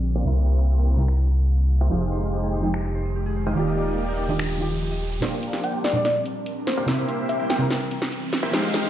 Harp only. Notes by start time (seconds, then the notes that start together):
Already playing: G4 A#4 D5
1.91 G4
2.01 D#5
2.12 C5
2.22 D#5
2.33 G4
2.43 G#4
2.53 C5
2.64 D#5
2.74 G4
2.84 D#5
2.95 C5
3.05 D#5
3.15 G4
3.26 G#4
3.36 C5
3.46 D#5
3.57 G4
3.67 D#5
3.77 D5
3.88 D#5
3.98 G4
4.08 A#4
4.19 D5
4.29 D#5
4.39 G4
4.50 D#5
4.60 G4
4.70 G4
4.81 D#5
4.91 D#5
5.01 G4
5.12 D#5